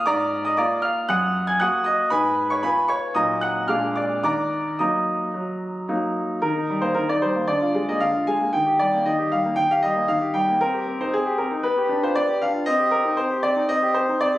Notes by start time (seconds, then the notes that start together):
0.06 G#2 D5 A#5 D6
0.45 D#5 D#6
0.57 A#3 F4 D5 A#5 D6
0.82 F5 F6
1.09 F#2 F#5 D#6 F#6
1.47 G#5 G#6
1.60 A#3 F#4 F#5 D#6 F#6
1.84 D#5 D#6
2.10 G#2 B4 G#5 B5
2.50 C#5 C#6
2.63 B3 F4 B4 G#5 B5
2.88 C#5 C#6
3.15 A#2 F#3 A#3 D#4 D#5 A#5 D#6
3.41 F#5 F#6
3.68 A#2 G#3 A#3 D4 F5 D6 F6
3.95 D5 D6
4.24 D#3 D5 A#5 D6
4.79 F#3 A#3 D#4 D#5 A#5 D#6
5.34 F#3
5.89 F#3 A#3 D#4
6.42 D#3 A#4
6.55 D#4
6.70 G3
6.81 A#3 C5
6.95 D#3 A#4
7.09 D#4 D5
7.22 G3 C5
7.35 A#3
7.48 D3 D5
7.61 F4
7.75 G#3
7.89 A#3 D#5
8.00 D3 F5
8.15 F4
8.27 G#3 G#5
8.40 A#3
8.53 D#3 G5
8.66 G4
8.79 G3 D5
8.94 A#3
9.06 D#3 D#5
9.19 G4
9.32 G3 F5
9.45 A#3
9.56 D#3 G5
9.71 G4 F5
9.82 G3 D#5
9.96 A#3
10.08 D#3 F5
10.21 G4
10.34 G3 G5
10.48 A#3
10.61 C4 A#4
10.74 G4
10.87 C4
11.01 D#4 C5
11.14 C4 G#4
11.26 G4
11.38 C4 A#4
11.51 D#4
11.63 B3 B4
11.78 G4
11.89 D4
12.03 F4 C5
12.16 B3 D5
12.29 G4
12.42 D4 F5
12.54 F4
12.66 C4 D#5
12.79 G4
12.91 C4 A#4
13.05 D#4
13.17 C4 C5
13.30 G4
13.43 C4 D5
13.56 D#4
13.69 C4 D#5
13.82 G4
13.94 C4 C5
14.09 D#4
14.21 C4 D5
14.34 G4